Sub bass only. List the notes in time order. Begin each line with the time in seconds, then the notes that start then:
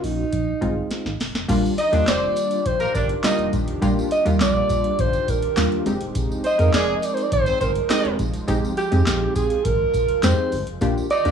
0.03 A#1
0.33 A#1
0.62 G1
1.05 G#1
1.20 D#1
1.34 F1
1.49 D#1
1.93 D#2
2.07 F1
2.66 A#1
2.95 G1
3.38 F1
3.53 D#1
3.68 F1
3.82 D#1
4.26 D#2
4.41 A#1
4.99 G1
5.28 D#1
5.57 D#2
5.86 F1
6.01 D#1
6.15 F1
6.59 F2
6.74 F1
7.32 G#1
7.61 G1
8.05 F1
8.19 F1
8.34 D#1
8.48 F1
8.92 F2
9.07 A#1
9.65 G#1
9.94 F1
10.23 F2
10.53 G1
10.67 F1
10.81 D#1
11.25 D#2